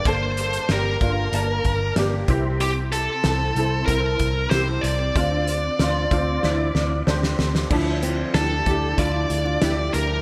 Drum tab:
CC |----------------|----------------|----------------|x---------------|
HH |x-xxx-x-x-x-x-x-|x-x-x-x-x-x-x-x-|x-x-x-x---------|--x-x-x-x-x-x-x-|
SD |----o-------o---|----o-------o---|----o---o-o-oooo|----o-------o---|
BD |o-----o---o---o-|--------o-o-----|o-----o---------|o-----o-o-------|